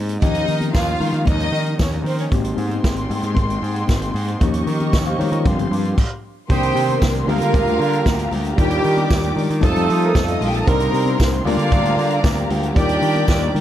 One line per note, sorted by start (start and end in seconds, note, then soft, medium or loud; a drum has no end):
0.00 0.17 G#2 medium
0.00 0.17 G#3 medium
0.00 0.18 A#3 medium
0.00 0.18 C4 medium
0.00 0.18 D#4 medium
0.00 0.19 G4 medium
0.09 closed hi-hat soft
0.21 0.43 D#2 medium
0.21 2.27 F3 medium
0.21 2.28 A#3 medium
0.21 2.28 C#4 medium
0.21 0.72 D#4 loud
0.21 2.28 D#4 medium
0.21 2.29 G4 medium
0.21 0.72 D#5 loud
0.21 kick loud
0.21 closed hi-hat medium
0.35 closed hi-hat medium
0.48 0.69 D#3 medium
0.48 open hi-hat medium
0.48 muted conga soft
0.61 closed hi-hat soft
0.61 high conga medium
0.74 0.95 D#2 loud
0.74 1.24 F4 loud
0.74 1.24 F5 loud
0.74 kick loud
0.74 snare loud
0.74 tambourine medium
0.87 closed hi-hat soft
1.00 1.11 D#3 loud
1.00 open hi-hat medium
1.00 high conga medium
1.00 low conga medium
1.13 1.23 D#3 loud
1.13 closed hi-hat soft
1.26 1.47 D#2 medium
1.26 1.77 D#4 loud
1.26 1.77 D#5 loud
1.26 kick loud
1.26 closed hi-hat medium
1.26 muted conga soft
1.26 high conga medium
1.26 low conga medium
1.40 closed hi-hat soft
1.52 1.73 D#3 medium
1.52 open hi-hat medium
1.52 muted conga soft
1.66 closed hi-hat soft
1.79 2.00 D#2 loud
1.79 1.90 C#4 medium
1.79 1.90 C#5 medium
1.79 kick loud
1.79 snare loud
1.79 tambourine loud
1.79 high conga medium
1.92 2.04 D#4 medium
1.92 2.04 D#5 medium
1.92 closed hi-hat soft
2.04 2.25 D#3 loud
2.04 2.17 C4 medium
2.04 2.17 C5 medium
2.04 open hi-hat medium
2.04 muted conga soft
2.19 2.30 C#4 medium
2.19 2.30 C#5 medium
2.19 closed hi-hat medium
2.31 2.52 G#1 medium
2.31 4.36 G#3 medium
2.31 4.39 G#3 medium
2.31 4.37 A#3 medium
2.31 4.37 C4 medium
2.31 4.37 D#4 medium
2.31 4.38 G4 medium
2.31 4.39 G5 medium
2.31 4.39 C6 medium
2.31 kick loud
2.31 closed hi-hat medium
2.31 muted conga soft
2.44 closed hi-hat medium
2.57 2.78 G#2 medium
2.57 open hi-hat medium
2.69 closed hi-hat soft
2.69 high conga medium
2.84 3.05 G#1 medium
2.84 kick loud
2.84 snare loud
2.84 tambourine medium
2.96 closed hi-hat soft
3.10 3.20 G#2 loud
3.10 open hi-hat medium
3.10 muted conga soft
3.10 high conga medium
3.10 low conga medium
3.23 3.33 G#2 loud
3.23 closed hi-hat medium
3.35 3.57 G#1 loud
3.35 kick loud
3.35 closed hi-hat soft
3.35 muted conga soft
3.35 high conga medium
3.35 low conga medium
3.50 closed hi-hat soft
3.62 3.83 G#2 loud
3.62 open hi-hat medium
3.62 muted conga soft
3.76 closed hi-hat soft
3.88 4.09 G#1 loud
3.88 kick loud
3.88 snare medium
3.88 tambourine medium
3.88 muted conga soft
3.88 high conga medium
4.02 closed hi-hat medium
4.14 4.35 G#2 medium
4.14 open hi-hat medium
4.14 muted conga soft
4.28 closed hi-hat soft
4.40 4.61 D#2 loud
4.40 5.43 F3 medium
4.40 5.43 A#3 medium
4.40 5.44 C#4 medium
4.40 5.44 D#4 medium
4.40 5.44 G4 medium
4.40 4.68 G4 medium
4.40 5.44 D#5 medium
4.40 5.44 C#6 medium
4.40 kick loud
4.40 closed hi-hat medium
4.54 closed hi-hat medium
4.67 4.95 D#3 loud
4.67 open hi-hat medium
4.67 muted conga soft
4.80 closed hi-hat soft
4.80 high conga medium
4.93 5.14 D#2 medium
4.93 kick loud
4.93 snare loud
4.93 tambourine loud
5.05 5.19 C5 medium
5.05 5.19 F5 medium
5.05 closed hi-hat soft
5.19 5.29 D#3 loud
5.19 5.32 G4 medium
5.19 5.32 C#5 medium
5.19 open hi-hat medium
5.19 muted conga soft
5.19 high conga medium
5.19 low conga medium
5.32 5.47 D#3 loud
5.32 5.58 F4 medium
5.32 5.58 A#4 medium
5.32 closed hi-hat medium
5.45 5.66 G1 loud
5.45 5.98 F3 medium
5.45 5.98 G3 medium
5.45 5.98 C4 medium
5.45 5.98 D4 medium
5.45 5.97 G4 medium
5.45 5.98 G4 medium
5.45 5.97 F5 medium
5.45 5.97 C6 medium
5.45 kick loud
5.45 closed hi-hat medium
5.45 muted conga soft
5.45 high conga medium
5.45 low conga medium
5.59 closed hi-hat soft
5.71 5.92 G2 loud
5.71 open hi-hat medium
5.71 muted conga soft
5.85 closed hi-hat soft
5.98 kick loud
5.98 crash medium
6.49 6.70 C2 loud
6.49 7.28 D#3 medium
6.49 7.01 G3 medium
6.49 7.25 A#3 medium
6.49 7.28 C4 medium
6.49 7.01 C4 medium
6.49 7.26 D4 medium
6.49 7.01 D#4 medium
6.49 7.01 G4 medium
6.49 7.27 G4 medium
6.49 7.27 A#4 medium
6.49 7.27 C5 medium
6.49 7.01 C5 medium
6.49 7.01 G5 loud
6.49 7.27 C6 medium
6.49 kick loud
6.49 closed hi-hat medium
6.49 muted conga soft
6.63 closed hi-hat medium
6.75 6.96 C3 loud
6.75 open hi-hat medium
6.89 closed hi-hat soft
6.89 high conga medium
7.01 7.22 C2 medium
7.01 kick loud
7.01 snare loud
7.01 tambourine loud
7.01 muted conga soft
7.15 closed hi-hat soft
7.25 7.38 D2 loud
7.25 8.54 G3 medium
7.25 8.30 G3 medium
7.25 8.55 A#3 medium
7.25 8.31 A#3 medium
7.25 8.55 D4 medium
7.25 8.56 F4 medium
7.25 8.30 F4 medium
7.25 8.31 F4 medium
7.25 9.61 G4 medium
7.25 8.56 G4 medium
7.25 8.31 A#4 loud
7.25 8.30 F5 loud
7.25 8.57 F5 medium
7.25 8.57 A#5 medium
7.25 open hi-hat medium
7.29 muted conga soft
7.29 low conga medium
7.41 7.51 D3 loud
7.41 closed hi-hat medium
7.53 7.64 D2 loud
7.53 kick loud
7.53 closed hi-hat medium
7.53 muted conga soft
7.53 high conga medium
7.53 low conga medium
7.67 7.77 D2 medium
7.67 closed hi-hat soft
7.80 8.00 D3 loud
7.80 open hi-hat medium
7.80 muted conga soft
7.93 closed hi-hat soft
8.06 8.26 D2 loud
8.06 kick loud
8.06 snare medium
8.06 tambourine loud
8.06 muted conga soft
8.06 high conga medium
8.19 closed hi-hat medium
8.31 8.52 D2 medium
8.31 open hi-hat medium
8.31 muted conga soft
8.31 low conga medium
8.45 closed hi-hat soft
8.56 8.79 D#2 medium
8.56 9.35 D#3 medium
8.56 9.60 G3 medium
8.56 9.35 G3 medium
8.56 9.60 D4 medium
8.56 9.35 D4 medium
8.56 9.60 D#4 medium
8.56 9.61 F4 medium
8.56 9.35 G4 loud
8.56 9.35 G4 medium
8.56 9.61 A#4 medium
8.56 9.62 D5 medium
8.56 9.35 G5 loud
8.56 9.62 D6 medium
8.56 kick loud
8.56 closed hi-hat medium
8.56 muted conga soft
8.71 closed hi-hat medium
8.84 9.05 D#3 medium
8.84 open hi-hat medium
8.97 closed hi-hat soft
8.97 high conga medium
9.08 9.31 D#2 medium
9.08 kick loud
9.08 snare loud
9.08 tambourine loud
9.08 muted conga soft
9.23 closed hi-hat soft
9.36 9.46 D#3 loud
9.36 open hi-hat medium
9.36 muted conga soft
9.36 low conga medium
9.50 9.60 D#3 loud
9.50 closed hi-hat medium
9.61 9.73 F2 loud
9.61 10.40 F3 medium
9.61 10.64 G3 medium
9.61 10.40 A3 medium
9.61 10.64 C4 medium
9.61 10.65 D#4 medium
9.61 10.40 D#4 medium
9.61 10.65 F4 medium
9.61 10.66 A4 medium
9.61 10.00 A4 loud
9.61 10.40 A4 loud
9.61 10.66 A4 medium
9.61 10.66 F5 medium
9.61 10.00 A5 loud
9.61 10.66 D#6 medium
9.61 kick loud
9.61 closed hi-hat medium
9.61 muted conga soft
9.61 high conga medium
9.61 low conga medium
9.76 9.86 F2 medium
9.76 closed hi-hat soft
9.89 10.09 F3 medium
9.89 open hi-hat medium
9.89 muted conga soft
10.02 10.14 A#3 medium
10.02 10.14 A#4 medium
10.02 closed hi-hat soft
10.15 10.35 F2 loud
10.15 10.24 C4 medium
10.15 10.24 C5 medium
10.15 kick loud
10.15 snare loud
10.15 tambourine loud
10.15 muted conga soft
10.15 high conga medium
10.24 10.32 D4 medium
10.24 10.33 D5 medium
10.28 10.41 D#4 medium
10.28 closed hi-hat medium
10.32 10.41 D#5 medium
10.41 10.61 A#1 loud
10.41 10.50 F4 medium
10.41 10.50 F5 loud
10.41 open hi-hat medium
10.41 muted conga soft
10.41 low conga medium
10.49 10.58 G4 medium
10.49 10.58 G5 loud
10.54 10.67 A4 medium
10.54 10.67 A5 medium
10.54 closed hi-hat soft
10.67 10.88 C2 loud
10.67 11.43 G3 medium
10.67 11.19 G3 medium
10.67 11.19 A#3 medium
10.67 11.45 C4 medium
10.67 11.45 D4 medium
10.67 11.46 D#4 medium
10.67 11.19 D#4 medium
10.67 11.45 A#4 medium
10.67 11.18 A#4 loud
10.67 11.19 A#4 loud
10.67 11.46 A#4 medium
10.67 11.45 C5 medium
10.67 11.18 A#5 loud
10.67 11.45 C6 medium
10.67 kick loud
10.67 closed hi-hat medium
10.67 muted conga soft
10.80 closed hi-hat medium
10.93 11.13 C3 loud
10.93 open hi-hat medium
11.06 closed hi-hat soft
11.06 high conga medium
11.18 11.40 C2 loud
11.18 kick loud
11.18 snare loud
11.18 tambourine loud
11.18 muted conga soft
11.33 closed hi-hat soft
11.45 11.55 D2 loud
11.45 12.73 G3 medium
11.45 12.73 A#3 medium
11.45 12.48 A#3 medium
11.45 12.74 D4 medium
11.45 12.48 D4 medium
11.45 12.48 F4 loud
11.45 12.74 F4 medium
11.45 13.61 G4 medium
11.45 12.48 G4 medium
11.45 12.74 A#4 medium
11.45 12.48 D5 medium
11.45 12.75 F5 medium
11.45 12.48 F5 loud
11.45 12.75 A#5 medium
11.45 open hi-hat medium
11.45 muted conga soft
11.45 low conga medium
11.57 11.68 D3 loud
11.57 closed hi-hat medium
11.71 11.82 D2 loud
11.71 kick loud
11.71 closed hi-hat medium
11.71 high conga medium
11.71 low conga medium
11.84 11.94 D2 medium
11.84 closed hi-hat soft
11.97 12.17 D3 medium
11.97 open hi-hat medium
11.97 muted conga soft
12.11 closed hi-hat soft
12.24 12.44 D2 loud
12.24 kick loud
12.24 snare loud
12.24 tambourine loud
12.24 high conga medium
12.37 closed hi-hat soft
12.50 12.70 D2 loud
12.50 open hi-hat medium
12.50 muted conga soft
12.50 low conga medium
12.63 closed hi-hat soft
12.74 12.96 D#2 loud
12.74 13.61 G3 medium
12.74 13.53 A#3 medium
12.74 13.61 D4 medium
12.74 13.53 D4 medium
12.74 13.61 D#4 medium
12.74 13.61 F4 medium
12.74 13.53 G4 medium
12.74 13.53 G4 loud
12.74 13.61 A#4 medium
12.74 13.53 D5 medium
12.74 13.61 D5 medium
12.74 13.53 G5 loud
12.74 13.61 D6 medium
12.74 kick loud
12.74 closed hi-hat medium
12.74 muted conga soft
12.89 closed hi-hat medium
13.02 13.22 D#3 loud
13.02 open hi-hat medium
13.02 muted conga soft
13.15 closed hi-hat soft
13.15 high conga medium
13.27 13.49 D#2 medium
13.27 kick loud
13.27 snare loud
13.27 tambourine loud
13.27 muted conga soft
13.41 closed hi-hat soft
13.55 13.61 D#3 loud
13.55 open hi-hat medium
13.55 low conga medium